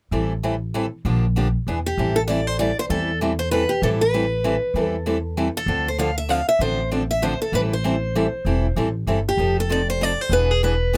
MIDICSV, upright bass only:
0, 0, Header, 1, 2, 480
1, 0, Start_track
1, 0, Key_signature, 0, "minor"
1, 0, Tempo, 308801
1, 185, Time_signature, 3, 2, 24, 8
1, 17053, End_track
2, 0, Start_track
2, 0, Title_t, "Upright bass"
2, 0, Program_c, 0, 32
2, 177, Note_on_c, 0, 33, 74
2, 1333, Note_off_c, 0, 33, 0
2, 1629, Note_on_c, 0, 34, 82
2, 2395, Note_off_c, 0, 34, 0
2, 2590, Note_on_c, 0, 40, 67
2, 2972, Note_off_c, 0, 40, 0
2, 3070, Note_on_c, 0, 33, 76
2, 4218, Note_off_c, 0, 33, 0
2, 4502, Note_on_c, 0, 40, 74
2, 5651, Note_off_c, 0, 40, 0
2, 5937, Note_on_c, 0, 33, 82
2, 7088, Note_off_c, 0, 33, 0
2, 7366, Note_on_c, 0, 40, 68
2, 8521, Note_off_c, 0, 40, 0
2, 8803, Note_on_c, 0, 38, 82
2, 9960, Note_off_c, 0, 38, 0
2, 10244, Note_on_c, 0, 33, 73
2, 11403, Note_off_c, 0, 33, 0
2, 11694, Note_on_c, 0, 33, 78
2, 12850, Note_off_c, 0, 33, 0
2, 13131, Note_on_c, 0, 28, 73
2, 13520, Note_off_c, 0, 28, 0
2, 13615, Note_on_c, 0, 33, 69
2, 14026, Note_off_c, 0, 33, 0
2, 14093, Note_on_c, 0, 31, 68
2, 14506, Note_off_c, 0, 31, 0
2, 14570, Note_on_c, 0, 29, 78
2, 15730, Note_off_c, 0, 29, 0
2, 16001, Note_on_c, 0, 28, 80
2, 17053, Note_off_c, 0, 28, 0
2, 17053, End_track
0, 0, End_of_file